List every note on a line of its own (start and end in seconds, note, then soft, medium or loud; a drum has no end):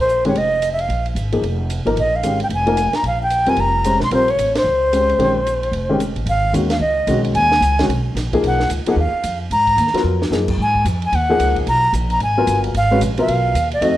0.00 0.32 A#1 medium
0.00 0.24 C5 medium
0.09 hi-hat pedal soft
0.25 0.34 D#3 medium
0.25 0.35 G#3 medium
0.25 0.35 C#4 medium
0.25 0.35 G4 medium
0.25 0.39 C#5 medium
0.25 ride soft
0.34 0.86 F1 medium
0.34 0.72 D#5 medium
0.34 ride medium
0.62 hi-hat pedal soft
0.62 ride medium
0.73 0.82 E5 medium
0.79 1.07 F5 medium
0.79 ride soft
0.88 1.14 A#1 medium
0.88 ride soft
1.06 ride soft
1.15 1.40 G#1 medium
1.15 hi-hat pedal soft
1.15 ride medium
1.32 1.42 F3 soft
1.32 1.42 A#3 soft
1.32 1.42 D#4 soft
1.32 1.42 G#4 medium
1.32 ride soft
1.42 1.82 F1 medium
1.42 ride medium
1.70 hi-hat pedal medium
1.70 ride medium
1.85 1.95 G#1 medium
1.85 1.95 F3 medium
1.85 1.96 A#3 medium
1.85 1.96 D#4 medium
1.85 1.96 A#4 medium
1.85 ride soft
1.96 2.21 A#1 medium
1.96 2.17 D#5 medium
1.96 ride medium
2.16 2.41 F5 medium
2.23 2.48 G#1 medium
2.23 2.38 D#3 soft
2.23 2.38 G#3 soft
2.23 2.39 C#4 soft
2.23 2.39 G4 medium
2.23 hi-hat pedal medium
2.23 ride medium
2.40 2.47 G5 medium
2.40 ride soft
2.49 2.90 F1 medium
2.49 ride medium
2.54 2.97 G#5 medium
2.66 2.76 F3 medium
2.66 2.76 A#3 medium
2.66 2.77 D#4 medium
2.66 2.77 A#4 medium
2.66 ride soft
2.77 hi-hat pedal medium
2.77 ride medium
2.93 3.05 A#5 medium
2.93 muted upright bass stroke soft
2.93 snare soft
2.93 ride soft
3.03 3.44 A#1 medium
3.03 ride soft
3.07 3.21 F5 medium
3.23 3.51 G5 medium
3.30 hi-hat pedal soft
3.30 ride medium
3.46 3.56 F2 medium
3.46 3.82 G3 medium
3.46 3.82 C4 medium
3.46 3.83 F4 soft
3.46 3.83 A#4 medium
3.46 3.62 G#5 medium
3.46 ride soft
3.57 3.98 F1 medium
3.57 4.02 A#5 medium
3.57 ride soft
3.84 4.00 G#3 soft
3.84 4.00 C#4 soft
3.84 4.00 G4 soft
3.84 4.00 C5 medium
3.84 hi-hat pedal medium
3.84 ride medium
4.00 4.10 B1 medium
4.00 4.12 C6 medium
4.00 snare soft
4.11 4.36 A#1 medium
4.11 4.27 G3 medium
4.11 4.27 C4 medium
4.11 4.27 F4 medium
4.11 4.27 A#4 medium
4.11 4.32 C5 medium
4.11 ride medium
4.28 4.56 C#5 medium
4.28 ride soft
4.37 4.63 A1 medium
4.37 hi-hat pedal soft
4.37 ride medium
4.55 5.97 C5 medium
4.55 snare medium
4.55 ride medium
4.64 5.16 C#2 medium
4.93 5.18 G#3 soft
4.93 5.18 C#4 soft
4.93 5.19 G4 soft
4.93 5.33 C5 medium
4.93 hi-hat pedal soft
4.93 ride medium
5.09 ride soft
5.18 5.70 A#1 medium
5.18 5.34 D#3 medium
5.18 5.34 G#3 medium
5.18 5.34 C#4 medium
5.18 5.35 G4 medium
5.18 ride medium
5.47 hi-hat pedal soft
5.47 ride medium
5.63 ride soft
5.72 6.13 F1 medium
5.72 ride medium
5.89 5.99 D#3 medium
5.89 5.99 G#3 medium
5.89 5.99 C#4 medium
5.89 5.99 G4 medium
6.00 hi-hat pedal medium
6.00 ride medium
6.16 6.25 A1 medium
6.16 ride soft
6.26 6.52 G#1 medium
6.26 6.53 F5 medium
6.26 ride medium
6.53 6.79 D#2 medium
6.53 6.69 D#3 medium
6.53 6.69 G#3 soft
6.53 6.69 C#4 soft
6.53 6.69 F#4 medium
6.53 hi-hat pedal soft
6.53 ride medium
6.70 6.80 F5 medium
6.70 snare medium
6.70 ride medium
6.79 7.06 C#2 medium
6.79 7.21 D#5 medium
7.07 7.33 B1 medium
7.07 7.48 D#3 medium
7.07 7.48 G#3 medium
7.07 7.49 C#4 medium
7.07 7.49 F#4 medium
7.07 hi-hat pedal medium
7.07 ride medium
7.25 ride soft
7.34 7.60 D#2 medium
7.34 7.85 G#5 loud
7.34 ride medium
7.52 snare medium
7.61 7.87 C#2 medium
7.61 hi-hat pedal medium
7.61 ride medium
7.79 7.88 D#3 medium
7.79 7.88 G#3 medium
7.79 7.88 C#4 medium
7.79 7.89 F#4 medium
7.79 snare medium
7.79 ride soft
7.88 8.14 B1 medium
7.88 ride medium
8.15 8.41 A#1 medium
8.15 snare soft
8.15 hi-hat pedal soft
8.15 ride medium
8.33 8.68 F3 medium
8.33 8.68 A#3 medium
8.33 8.68 D#4 medium
8.33 8.69 G#4 medium
8.33 kick medium
8.33 ride soft
8.42 8.69 B1 medium
8.42 ride medium
8.47 8.70 F#5 medium
8.60 snare soft
8.70 8.85 C#2 medium
8.70 hi-hat pedal medium
8.70 ride medium
8.86 8.96 F3 medium
8.86 8.96 A#3 medium
8.86 8.97 D#4 medium
8.86 8.97 G#4 medium
8.86 8.98 F#5 medium
8.86 muted upright bass stroke soft
8.86 ride medium
8.96 9.12 D#2 medium
8.96 9.39 F5 medium
9.13 muted upright bass stroke soft
9.24 9.50 F2 medium
9.24 hi-hat pedal medium
9.24 ride medium
9.51 9.76 G#2 medium
9.51 10.02 A#5 loud
9.51 ride medium
9.67 kick soft
9.67 ride soft
9.77 9.92 D#2 medium
9.77 hi-hat pedal soft
9.77 ride medium
9.87 snare soft
9.93 10.29 F#3 medium
9.93 10.30 B3 medium
9.93 10.30 F4 medium
9.93 10.30 A#4 medium
9.93 muted upright bass stroke soft
9.93 snare soft
9.93 ride soft
10.04 10.30 F2 medium
10.22 snare medium
10.30 10.57 F#2 medium
10.30 10.47 F3 medium
10.30 10.47 A#3 soft
10.30 10.47 D#4 soft
10.30 10.47 G#4 medium
10.30 snare medium
10.30 hi-hat pedal medium
10.48 kick medium
10.48 crash medium
10.58 10.84 G#2 medium
10.62 10.86 G#5 medium
10.75 kick soft
10.85 11.11 F2 medium
10.85 hi-hat pedal medium
10.85 ride medium
11.02 11.17 G#5 medium
11.02 ride soft
11.12 11.39 D#2 medium
11.12 11.57 F#5 medium
11.12 ride medium
11.29 11.65 F3 medium
11.29 11.65 A#3 medium
11.29 11.65 D#4 medium
11.29 11.65 G#4 medium
11.39 11.66 C#2 medium
11.39 hi-hat pedal medium
11.39 ride medium
11.56 kick medium
11.56 ride soft
11.66 11.92 B1 medium
11.66 11.93 A#5 loud
11.66 ride medium
11.93 12.19 A#1 medium
11.93 hi-hat pedal medium
11.93 ride medium
12.10 12.21 A#5 medium
12.10 ride soft
12.20 12.46 G#1 medium
12.20 12.62 G#5 medium
12.20 ride soft
12.37 12.73 F#3 medium
12.37 12.73 B3 medium
12.37 12.73 F4 medium
12.37 12.73 A#4 medium
12.47 12.73 G1 medium
12.47 hi-hat pedal medium
12.47 ride medium
12.64 ride soft
12.74 13.00 G#1 medium
12.74 13.01 F5 loud
12.74 ride medium
12.91 13.00 G#3 medium
12.91 13.00 C#4 medium
12.91 13.01 F#4 medium
12.91 13.01 B4 medium
13.01 13.27 A#1 medium
13.01 hi-hat pedal medium
13.01 ride medium
13.18 13.53 F#3 medium
13.18 13.53 B3 medium
13.18 13.54 F4 medium
13.18 13.54 A#4 medium
13.18 13.70 F5 medium
13.18 ride soft
13.28 13.54 B1 medium
13.28 ride medium
13.54 13.80 D#2 medium
13.54 hi-hat pedal medium
13.54 ride medium
13.72 13.97 D#5 medium
13.72 ride soft
13.81 13.97 F2 medium
13.81 13.97 A3 medium
13.81 13.97 C4 medium
13.81 13.97 D#4 medium
13.81 13.97 F#4 medium
13.81 ride medium